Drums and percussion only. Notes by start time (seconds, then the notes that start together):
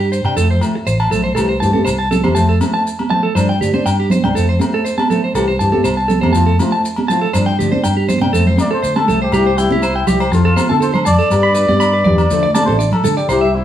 0.13 maracas
0.25 low agogo
0.37 maracas
0.61 low agogo, maracas
0.87 maracas
1.00 low agogo
1.12 maracas
1.36 low agogo, maracas
1.63 maracas
1.74 high conga
1.86 low agogo, maracas
2.11 high conga, low conga, maracas
2.24 high conga, low agogo
2.36 maracas
2.61 high conga, low agogo, maracas
2.87 maracas
2.99 high conga, low agogo
3.11 low conga
3.36 low agogo, maracas
3.62 maracas
3.74 high conga
3.86 low agogo, maracas
4.10 high conga, low conga, maracas
4.24 high conga, low agogo
4.37 maracas
4.60 high conga, low agogo, maracas
4.86 maracas
4.98 high conga, low agogo
5.10 low conga, maracas
5.35 low agogo, maracas
5.60 maracas
5.73 high conga
5.85 low agogo, maracas
6.09 high conga, low conga, maracas
6.23 high conga, low agogo
6.35 maracas
6.59 high conga, low agogo, maracas
6.85 maracas
6.96 high conga, low agogo
7.10 low conga, maracas
7.34 low agogo, maracas
7.60 maracas
7.72 high conga
7.84 low agogo, maracas
8.09 high conga, low conga, maracas
8.21 high conga, low agogo
8.35 maracas
8.46 low conga
8.58 high conga, low agogo, maracas
8.84 maracas
8.96 high conga, low agogo
9.08 low conga, maracas
9.32 low agogo, maracas
9.58 maracas
9.71 high conga
9.82 low agogo, maracas
10.07 low conga, maracas
10.20 low agogo, maracas
10.33 maracas
10.57 high conga, low agogo, maracas
10.69 high conga
10.82 maracas
10.94 low conga, low agogo
11.06 low conga, maracas
11.20 maracas
11.31 low agogo, maracas
11.55 maracas
11.69 high conga
11.81 low agogo, maracas
12.05 low conga
12.18 low agogo, maracas
12.31 maracas
12.55 high conga, low agogo, maracas
12.67 high conga
12.80 maracas
12.92 low conga, low agogo
13.04 low conga, maracas
13.18 maracas
13.29 low agogo, maracas